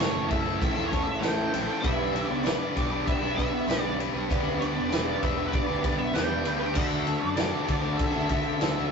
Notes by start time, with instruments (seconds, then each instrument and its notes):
Already playing: picked electric bass F#1, lead electric guitar C#5
0.00 overdriven electric guitar A2 A3 C#4 E4 A4, twelve-string acoustic guitar E3, snare, ride
0.14 overdriven electric guitar C#4 E4 A4
0.29 picked electric bass F#1, overdriven electric guitar A3 C#4 E4 A4, lead electric guitar E5, kick, ride
0.46 overdriven electric guitar C#4 E4 A4
0.58 twelve-string acoustic guitar E3 A3 C#4, lead electric guitar E5, kick
0.62 twelve-string acoustic guitar A4, ride
0.76 picked electric bass E2, overdriven electric guitar C#4 E4 A4
0.86 lead electric guitar C#5
0.91 overdriven electric guitar A3 C#4 E4 A4, kick, ride
1.03 picked electric bass A1, lead electric guitar E5, muted overdriven electric guitar stroke
1.19 overdriven electric guitar A2 A3, lead electric guitar G5
1.23 twelve-string acoustic guitar E3, overdriven electric guitar C#4 E4 A4, snare, ride
1.37 overdriven electric guitar C#4 E4 A4
1.52 picked electric bass A#1, overdriven electric guitar A3 C#4 E4 A4, twelve-string acoustic guitar C#4 A4, muted overdriven electric guitar stroke, ride
1.56 twelve-string acoustic guitar A3
1.64 overdriven electric guitar A4, lead electric guitar G5
1.68 overdriven electric guitar C#4 E4
1.80 picked electric bass B1, overdriven electric guitar B3 D4 G4 B4, lead electric guitar E5, ride
1.84 kick
2.13 overdriven electric guitar B3 D4 G4 B4, ride
2.26 lead electric guitar D5
2.30 picked electric bass C#2, muted overdriven electric guitar stroke
2.45 overdriven electric guitar B3 D4 G4 B4, snare, ride
2.60 overdriven electric guitar D4 G4 B4
2.74 picked electric bass B1, overdriven electric guitar B3 D4 G4 B4, kick, ride
2.90 overdriven electric guitar D4 G4 B4, lead electric guitar D5
3.05 twelve-string acoustic guitar B3 D4 G4 B4, lead electric guitar E5, kick, ride
3.21 picked electric bass B1, overdriven electric guitar D4 G4 B4
3.36 overdriven electric guitar B3 D4 G4, lead electric guitar E5, kick, ride
3.40 overdriven electric guitar B4
3.53 muted overdriven electric guitar stroke
3.67 picked electric bass B1, overdriven electric guitar B3 D4 G4 B4, snare, ride
3.81 overdriven electric guitar G4 B4, lead electric guitar D5
3.85 overdriven electric guitar D4
3.97 overdriven electric guitar B3 D4 G4 B4, twelve-string acoustic guitar D4 G4 B4, muted overdriven electric guitar stroke, ride
4.13 picked electric bass B1, overdriven electric guitar D4 G4 B4
4.28 picked electric bass D2, overdriven electric guitar B3 D4 G4 B4, kick, ride
4.60 overdriven electric guitar B3 D4 G4 B4, lead electric guitar D5, ride
4.76 picked electric bass E1, muted overdriven electric guitar stroke
4.91 overdriven electric guitar B3 D4 G4 B4, snare, ride
5.05 overdriven electric guitar D4 G4 B4
5.21 picked electric bass E1, overdriven electric guitar B3 D4 G4 B4, lead electric guitar E5, kick, ride
5.36 overdriven electric guitar D4 G4 B4
5.46 lead electric guitar B4
5.52 twelve-string acoustic guitar B3 D4 G4 B4, lead electric guitar D5, kick, ride
5.67 picked electric bass D2, overdriven electric guitar D4 G4 B4
5.82 overdriven electric guitar B3 D4 G4 B4, lead electric guitar D5, kick, ride
5.98 picked electric bass B1, lead electric guitar E5, muted overdriven electric guitar stroke
6.12 overdriven electric guitar B3 D4 G4 B4, lead electric guitar G5, ride
6.16 picked electric bass E2, snare
6.28 overdriven electric guitar D4 G4 B4
6.44 picked electric bass D2, overdriven electric guitar B3 D4 G4 B4, twelve-string acoustic guitar G4 B4, muted overdriven electric guitar stroke, ride
6.48 twelve-string acoustic guitar D4
6.59 overdriven electric guitar D4 G4 B4, lead electric guitar G5
6.73 picked electric bass D2, overdriven electric guitar D3 D4 F#4, lead electric guitar E5, kick, crash
6.77 overdriven electric guitar A4
7.05 overdriven electric guitar D3 D4 F#4, twelve-string acoustic guitar A4, ride
7.09 overdriven electric guitar A4
7.19 lead electric guitar D5, muted overdriven electric guitar stroke
7.24 picked electric bass F#2
7.37 overdriven electric guitar D3 D4 F#4 A4, snare, ride
7.52 overdriven electric guitar D4 F#4 A4
7.66 picked electric bass D2, overdriven electric guitar D3 D4 F#4 A4, kick, ride
7.82 overdriven electric guitar D4 F#4 A4, lead electric guitar D5
7.97 twelve-string acoustic guitar D3 D4 F#4 A4, lead electric guitar E5, kick, ride
8.13 picked electric bass D2, overdriven electric guitar D4 F#4 A4
8.29 overdriven electric guitar D3 D4 F#4 A4, lead electric guitar E5, kick, ride
8.44 muted overdriven electric guitar stroke
8.60 picked electric bass D2, overdriven electric guitar D3 D4 F#4 A4, snare, ride
8.75 overdriven electric guitar D4 F#4 A4